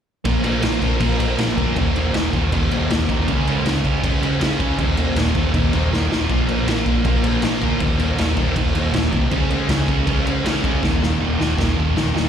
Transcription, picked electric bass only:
0.25 A#1
0.62 A#1
0.82 A#1
1.01 A#1
1.20 A#1
1.38 A#1
1.58 D2
1.77 D#1
2.13 D#1
2.33 D#1
2.52 D#1
2.71 D#1
2.89 D#1
3.09 D#1
3.28 C#2
3.65 C#2
3.84 C#2
4.04 C#2
4.22 C#2
4.40 C#2
4.60 C#2
4.79 D#1
5.16 D#1
5.35 D#1
5.54 D#1
5.74 D#1
5.92 D#1
6.11 D#1
6.30 A#1
6.68 A#1
6.86 A#1
7.05 A#1
7.24 A#1
7.42 A#1
7.61 D2
7.80 D#1
8.19 D#1
8.37 D#1
8.56 D#1
8.75 D#1
8.93 D#1
9.12 C2
9.32 C#2
9.69 C#2
9.88 C#2
10.07 C#2
10.26 C#2
10.45 C#2
10.64 C#2
10.83 D#1
11.21 D#1
11.39 D#1
11.58 D#1
11.78 D#1
11.96 D#1
12.15 D#1

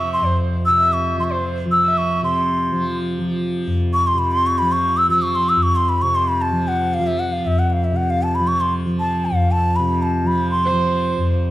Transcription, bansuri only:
Already playing: C#6
0.13 C6
0.66 E6
0.93 C#6
1.20 C6
1.24 C#6
1.30 C6
1.71 E6
1.98 C#6
2.24 C6
3.93 C#6
4.07 C6
4.18 B5
4.32 C6
4.46 C#6
4.58 B5
4.72 C#6
4.97 E6
5.10 E6
5.22 C#6
5.35 C6
5.49 E6
5.63 C#6
5.76 C6
5.89 B5
6.02 C#6
6.15 C6
6.28 B5
6.42 A5
6.68 F#5
6.94 F5
7.07 E5
7.19 F#5
7.33 F5
7.46 E5
7.59 F#5
7.70 F5 F#5
7.84 E5
7.96 F#5
8.10 F5
8.23 A5
8.35 B5
8.47 C#6
8.61 C6
8.99 A5
9.25 F5
9.51 A5
9.76 B5
10.02 A5
10.27 B5
10.51 C6

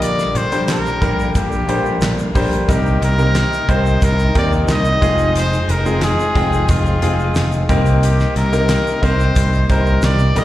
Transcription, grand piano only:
Already playing: A#2 D3 G3 A#3 G4 A#4
0.52 G3 A#3 D4 G4 C5
1.01 G3 A#3 D4 G4 A#4
1.68 G3 A#3 D4 G4 C5
2.35 G3 A#3 D4 G4 C5
2.68 C3 A#3 C4 D#4 G4 A#4
3.18 A#3 C4 D#4 G4 A#4
3.68 A#3 C4 D#4 G4 C5
4.35 A#3 C4 D#4 G4 A#4
5.01 G#3 C4 D#4 F4 G#4
5.85 G#3 C4 D#4 F4 G#4
6.36 G#3 C4 D#4 F4 G5
7.02 G#3 C4 D#4 F4 G#4
7.69 C3 A#3 C4 D#4 G4 A#4
8.52 A#3 C4 D#4 G4 A#4
9.02 A#3 C4 D#4 G4 A#4
9.69 A#3 C4 D#4 G4 C5
10.36 A#2 D3 G3 A#3 G4 A#4

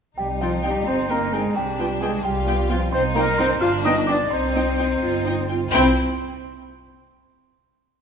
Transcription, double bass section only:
0.17 C2
0.86 G1
1.56 C2
2.24 C2
2.92 C2
3.61 G1
4.31 C2
5.02 G1
5.72 C2

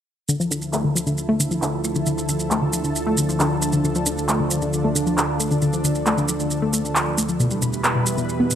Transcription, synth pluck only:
0.29 D3
0.40 F3
0.51 D3
0.73 A3
0.84 D3
0.95 F3
1.07 D3
1.29 A3
1.40 D3
1.51 F3
1.62 D3
1.84 A3
1.96 D3
2.07 D3
2.18 F3
2.29 D3
2.51 A3
2.62 D3
2.73 F3
2.84 D3
3.07 A3
3.18 D3
3.29 F3
3.40 D3
3.62 A3
3.73 D3
3.84 D3
3.95 F3
4.07 D3
4.29 A3
4.40 D3
4.51 F3
4.62 D3
4.84 A3
4.95 D3
5.07 F3
5.18 D3
5.40 A3
5.51 D3
5.62 D3
5.73 F3
5.84 D3
6.07 A3
6.18 D3
6.29 F3
6.40 D3
6.62 A3
6.73 A3
6.84 D3
6.96 D3
7.18 A3
7.29 F3
7.40 B2
7.51 G3
7.62 B2
7.84 B3
7.95 B2
8.07 G3
8.18 B2
8.40 B3
8.51 B2

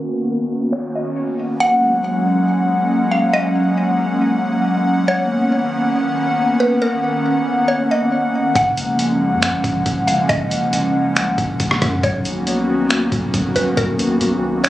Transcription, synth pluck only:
Already playing: A#4
0.72 C#5
0.95 D#5
1.60 F#5
3.11 F5
3.33 D#5
5.08 C#5
6.60 B4
6.82 A#4
7.68 C#5
7.91 D#5
8.56 F#5
10.07 F5
10.29 D#5
12.04 C#5
13.56 B4
13.77 A#4
14.64 C#5

